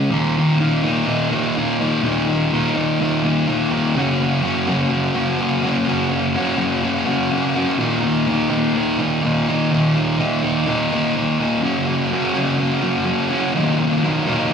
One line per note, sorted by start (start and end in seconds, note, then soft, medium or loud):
0.10 0.86 D#2 medium
0.10 0.57 A#2 medium
0.10 0.38 D#3 medium
0.10 0.37 A#3 medium
0.10 0.36 D#4 medium
0.36 0.60 D#3 medium
0.36 0.60 A#3 medium
0.36 0.60 D#4 medium
0.58 0.83 A#2 medium
0.58 0.84 D#3 medium
0.58 0.84 A#3 medium
0.58 0.83 D#4 medium
0.83 1.33 D#2 medium
0.83 1.05 A#2 medium
0.83 1.06 D#3 medium
0.83 1.08 A#3 medium
0.83 1.08 D#4 medium
1.06 1.32 A#2 medium
1.06 1.31 D#3 medium
1.06 1.32 A#3 medium
1.06 1.29 D#4 medium
1.31 1.81 D#2 medium
1.31 1.55 A#2 medium
1.31 1.56 D#3 medium
1.31 1.57 A#3 medium
1.31 1.58 D#4 medium
1.56 2.02 A#2 medium
1.56 1.81 D#3 medium
1.56 1.80 A#3 medium
1.56 1.78 D#4 medium
1.79 2.02 D#3 medium
1.79 2.04 A#3 medium
1.79 2.03 D#4 medium
2.02 2.51 D#2 medium
2.02 2.51 A#2 medium
2.02 2.28 D#3 loud
2.02 2.28 A#3 loud
2.02 2.25 D#4 medium
2.26 2.52 D#3 medium
2.26 2.53 A#3 medium
2.26 2.53 D#4 medium
2.52 2.76 A#2 medium
2.52 2.75 D#3 medium
2.52 2.76 A#3 medium
2.52 2.74 D#4 medium
2.75 3.24 D#2 medium
2.75 2.99 A#2 medium
2.75 2.99 D#3 medium
2.75 3.01 A#3 medium
2.75 3.01 D#4 medium
3.00 3.24 A#2 medium
3.00 3.23 D#3 medium
3.00 3.23 A#3 medium
3.00 3.22 D#4 medium
3.23 3.73 D#2 medium
3.23 3.46 A#2 medium
3.23 3.46 D#3 medium
3.23 3.48 A#3 medium
3.23 3.48 D#4 medium
3.47 3.94 A#2 medium
3.47 3.73 D#3 medium
3.47 3.73 A#3 medium
3.47 3.70 D#4 medium
3.71 3.95 D#3 medium
3.71 3.96 A#3 medium
3.71 3.94 D#4 medium
3.95 4.69 F#2 loud
3.95 4.44 C#3 loud
3.95 4.22 F#3 medium
3.95 4.21 A#3 loud
3.95 4.20 C#4 loud
3.95 4.19 F#4 loud
4.19 4.41 F#3 medium
4.19 4.42 A#3 medium
4.19 4.42 C#4 medium
4.19 4.44 F#4 medium
4.41 4.68 F#3 medium
4.41 4.68 A#3 medium
4.41 4.67 C#4 medium
4.41 4.67 F#4 medium
4.67 5.16 F#2 medium
4.67 5.16 C#3 medium
4.67 4.89 F#3 medium
4.67 4.91 A#3 medium
4.67 4.91 C#4 medium
4.67 4.92 F#4 loud
4.90 5.15 F#3 medium
4.90 5.15 A#3 medium
4.90 5.14 C#4 medium
4.90 5.13 F#4 medium
5.14 5.65 F#2 medium
5.14 5.64 C#3 medium
5.14 5.39 F#3 medium
5.14 5.40 A#3 medium
5.14 5.40 C#4 medium
5.14 5.41 F#4 medium
5.40 5.64 F#3 medium
5.40 5.64 A#3 medium
5.40 5.62 C#4 medium
5.40 5.62 F#4 medium
5.63 5.86 F#3 medium
5.63 5.88 A#3 medium
5.63 5.87 C#4 medium
5.63 5.88 F#4 medium
5.86 6.35 F#2 medium
5.86 6.35 C#3 medium
5.86 6.11 F#3 medium
5.86 6.11 A#3 medium
5.86 6.10 C#4 loud
5.86 6.08 F#4 loud
6.09 6.33 F#3 medium
6.09 6.34 A#3 medium
6.09 6.34 C#4 medium
6.09 6.35 F#4 medium
6.34 6.57 F#3 medium
6.34 6.57 A#3 medium
6.34 6.57 C#4 medium
6.34 6.55 F#4 medium
6.56 7.07 F#2 medium
6.56 7.07 C#3 medium
6.56 6.82 F#3 medium
6.56 6.83 A#3 medium
6.56 6.83 C#4 medium
6.56 6.83 F#4 medium
6.83 7.05 F#3 medium
6.83 7.07 A#3 medium
6.83 7.05 C#4 medium
6.83 7.05 F#4 medium
7.06 7.56 F#2 medium
7.06 7.56 C#3 medium
7.06 7.30 F#3 medium
7.06 7.32 A#3 medium
7.06 7.31 C#4 medium
7.06 7.32 F#4 medium
7.31 7.56 F#3 medium
7.31 7.57 A#3 medium
7.31 7.55 C#4 medium
7.31 7.54 F#4 medium
7.55 7.79 F#3 medium
7.55 7.80 A#3 medium
7.55 7.78 C#4 medium
7.55 7.78 F#4 medium
7.78 8.51 D#2 medium
7.78 8.25 A#2 medium
7.78 8.04 D#3 medium
7.78 8.03 A#3 loud
7.78 8.01 D#4 medium
8.02 8.27 D#3 medium
8.02 8.28 A#3 medium
8.02 8.29 D#4 medium
8.27 8.50 A#2 medium
8.27 8.49 D#3 medium
8.27 8.50 A#3 medium
8.27 8.48 D#4 medium
8.49 8.99 D#2 medium
8.49 8.73 A#2 medium
8.49 8.74 D#3 medium
8.49 8.76 A#3 medium
8.49 8.76 D#4 medium
8.74 8.99 A#2 medium
8.74 8.98 D#3 medium
8.74 8.98 A#3 medium
8.74 8.97 D#4 medium
8.98 9.48 D#2 medium
8.98 9.21 A#2 medium
8.98 9.23 D#3 medium
8.98 9.24 A#3 medium
8.98 9.24 D#4 medium
9.22 9.71 A#2 medium
9.22 9.50 D#3 medium
9.22 9.49 A#3 medium
9.22 9.47 D#4 medium
9.48 9.72 D#3 medium
9.48 9.74 A#3 medium
9.48 9.73 D#4 medium
9.71 10.19 D#2 medium
9.71 10.16 A#2 medium
9.71 9.97 D#3 medium
9.71 9.96 A#3 medium
9.71 9.94 D#4 medium
9.95 10.17 D#3 medium
9.95 10.19 A#3 medium
9.95 10.19 D#4 medium
10.17 10.43 A#2 medium
10.17 10.43 D#3 medium
10.17 10.43 A#3 medium
10.17 10.41 D#4 medium
10.43 10.92 D#2 medium
10.43 10.64 A#2 medium
10.43 10.65 D#3 medium
10.43 10.67 A#3 medium
10.43 10.67 D#4 loud
10.66 10.93 A#2 medium
10.66 10.92 D#3 medium
10.66 10.92 A#3 medium
10.66 10.90 D#4 medium
10.92 11.40 D#2 medium
10.92 11.14 A#2 medium
10.92 11.14 D#3 medium
10.92 11.17 A#3 medium
10.92 11.16 D#4 medium
11.15 11.61 A#2 medium
11.15 11.40 D#3 medium
11.15 11.40 A#3 medium
11.15 11.38 D#4 medium
11.39 11.63 D#3 medium
11.39 11.63 A#3 medium
11.39 11.61 D#4 medium
11.62 12.10 F#2 loud
11.62 12.10 C#3 loud
11.62 11.89 F#3 loud
11.62 11.88 A#3 loud
11.62 11.86 C#4 loud
11.62 11.86 F#4 medium
11.87 12.10 F#3 medium
11.87 12.12 A#3 medium
11.87 12.11 C#4 medium
11.87 12.13 F#4 medium
12.10 12.35 F#3 medium
12.10 12.35 A#3 medium
12.10 12.33 C#4 medium
12.10 12.34 F#4 medium
12.34 12.83 F#2 medium
12.34 12.82 C#3 medium
12.34 12.56 F#3 medium
12.34 12.57 A#3 medium
12.34 12.58 C#4 medium
12.34 12.59 F#4 medium
12.57 12.82 F#3 medium
12.57 12.82 A#3 medium
12.57 12.81 C#4 medium
12.57 12.81 F#4 medium
12.82 13.31 F#2 medium
12.82 13.31 C#3 medium
12.82 13.04 F#3 medium
12.82 13.05 A#3 medium
12.82 13.05 C#4 medium
12.82 13.06 F#4 medium
13.05 13.31 F#3 medium
13.05 13.30 A#3 medium
13.05 13.29 C#4 medium
13.05 13.28 F#4 medium
13.29 13.54 F#3 medium
13.29 13.53 A#3 medium
13.29 13.53 C#4 medium
13.29 13.52 F#4 medium
13.55 14.03 D#2 medium
13.55 14.03 A#2 medium
13.55 13.81 D#3 loud
13.55 13.79 F#3 loud
13.55 13.79 A#3 medium
13.55 13.78 D#4 medium
13.79 14.02 D#3 medium
13.79 14.02 F#3 medium
13.79 14.04 A#3 medium
13.79 14.04 D#4 medium
14.03 14.26 D#3 medium
14.03 14.26 F#3 medium
14.03 14.26 A#3 medium
14.03 14.25 D#4 medium
14.26 14.54 D#2 medium
14.26 14.54 A#2 medium
14.26 14.49 D#3 medium
14.26 14.50 F#3 medium
14.26 14.51 A#3 medium
14.26 14.52 D#4 loud
14.51 14.54 D#3 medium